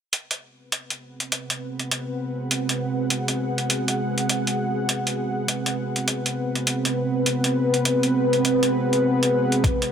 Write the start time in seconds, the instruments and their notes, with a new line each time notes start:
0.13 analog synth pad C4 G#4 B4 F#5, closed hi-hat
0.31 closed hi-hat
0.72 closed hi-hat
0.90 closed hi-hat
1.20 closed hi-hat
1.32 closed hi-hat
1.50 closed hi-hat
1.79 closed hi-hat
1.91 closed hi-hat
2.51 closed hi-hat
2.69 closed hi-hat
3.10 closed hi-hat
3.28 closed hi-hat
3.58 closed hi-hat
3.70 closed hi-hat
3.88 closed hi-hat
4.18 closed hi-hat
4.29 closed hi-hat
4.47 closed hi-hat
4.89 closed hi-hat
5.07 closed hi-hat
5.48 closed hi-hat
5.66 closed hi-hat
5.96 closed hi-hat
6.08 closed hi-hat
6.26 closed hi-hat
6.55 closed hi-hat
6.67 closed hi-hat
6.85 closed hi-hat
7.26 closed hi-hat
7.44 closed hi-hat
7.74 closed hi-hat
7.85 closed hi-hat
8.03 closed hi-hat
8.33 closed hi-hat
8.45 closed hi-hat
8.63 closed hi-hat
8.93 closed hi-hat
9.23 closed hi-hat
9.52 closed hi-hat
9.63 analog synth pad F5, kick, closed hi-hat
9.82 closed hi-hat